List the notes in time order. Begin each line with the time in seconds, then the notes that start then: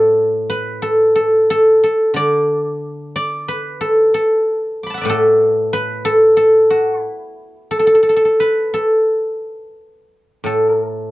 Already playing: A2 A4
0.50 B4
0.82 A4
1.15 A4
1.50 A4
1.84 A4
2.14 D3 D5
3.16 D5
3.48 B4
3.81 A4
4.14 A4
4.83 B5 D6
4.90 A5
4.94 E5 F#5
5.01 A2 B4 D5
5.10 A4
5.73 B4
6.05 A4
6.37 A4
6.70 F#4
7.00 E4
7.71 A4
7.79 A4
7.87 A4
7.95 A4
8.03 A4
8.09 A4
8.16 A4
8.25 A4
8.40 B4
8.74 A4
10.44 A2 A4